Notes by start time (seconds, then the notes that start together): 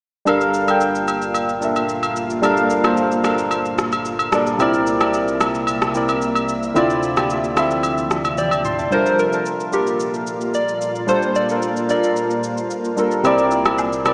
0.25 G1 A#2 G3 A#3 D4 F4 A4 A#4 F5, high agogo, shaker
0.41 shaker
0.54 shaker
0.67 G3 D4 A4 A#4 G5, high agogo, shaker
0.81 shaker
0.95 shaker
1.08 high agogo, shaker
1.22 shaker
1.34 high agogo, shaker
1.49 shaker
1.61 G3 D4 A4 A#4 E5, shaker
1.76 high agogo, shaker
1.89 shaker
2.03 high agogo, shaker
2.16 shaker
2.30 shaker
2.42 G3 D4 A4 A#4 F5, high agogo, shaker
2.57 shaker
2.70 shaker
2.83 G3 D4 A4 A#4 C5, cross-stick, high agogo, shaker
2.97 shaker
3.12 shaker
3.23 G3 D4 A4 A#4 F5, cross-stick, high agogo, shaker
3.38 shaker
3.51 high agogo, shaker
3.65 shaker
3.78 cross-stick, shaker
3.92 high agogo, shaker
4.05 shaker
4.19 high agogo, shaker
4.32 G3 D4 A4 A#4 D5, cross-stick, shaker
4.47 shaker
4.58 C2 C3 A#3 C4 E4 A#4 D5 E5, high agogo, shaker
4.74 shaker
4.87 shaker
4.99 C3 C4 E4 A#4 D5, cross-stick, high agogo, shaker
5.14 shaker
5.28 shaker
5.41 cross-stick, high agogo, shaker
5.55 shaker
5.67 high agogo, shaker
5.82 cross-stick, shaker
5.93 C3 C4 E4 A#4 D5, shaker
6.09 high agogo, shaker
6.22 shaker
6.35 high agogo, shaker
6.49 shaker
6.63 shaker
6.74 D2 D3 F3 C4 E4 F4 D5, high agogo, shaker
6.90 shaker
7.03 shaker
7.15 D3 C4 E4 F4 G4, cross-stick, high agogo, shaker
7.30 shaker
7.44 shaker
7.55 D3 C4 E4 F4 E5, cross-stick, high agogo, shaker
7.71 shaker
7.83 high agogo, shaker
7.98 shaker
8.11 cross-stick, shaker
8.25 high agogo, shaker
8.38 D5 G5, high tom, shaker
8.51 E5 A5, high agogo, shaker
8.65 G5 C6, mid tom, shaker
8.79 E5 A5, floor tom, shaker
8.90 A#2 G3 A#3 D4 F4 A4 A#4 C5, shaker
9.06 shaker
9.19 A#4, shaker
9.32 G3 D4 F4 A#4 A5, shaker
9.46 shaker
9.60 shaker
9.71 G3 D4 F4 G4 A4 A#4, shaker
9.87 shaker
10.00 shaker
10.14 shaker
10.27 shaker
10.41 shaker
10.54 D5, shaker
10.69 shaker
10.81 shaker
10.96 shaker
11.07 G3 D4 F4 A4 C5, shaker
11.22 shaker
11.35 D5, shaker
11.48 G3 D4 F4 A4 A#4, shaker
11.62 shaker
11.77 shaker
11.88 G3 D4 F4 A4 A#4 D5, shaker
12.04 shaker
12.17 shaker
12.31 shaker
12.44 shaker
12.58 shaker
12.71 shaker
12.85 shaker
12.96 G3 D4 F4 A4 A#4, shaker
13.11 shaker
13.23 C2 C3 A#3 C4 E4 G4 A#4 D5, high agogo, shaker
13.38 shaker
13.51 shaker
13.64 C3 C4 E4 A#4 D5, cross-stick, high agogo, shaker
13.78 low woodblock, shaker
13.93 shaker
14.04 C3 C4 E4 A#4 D5, cross-stick, high agogo, shaker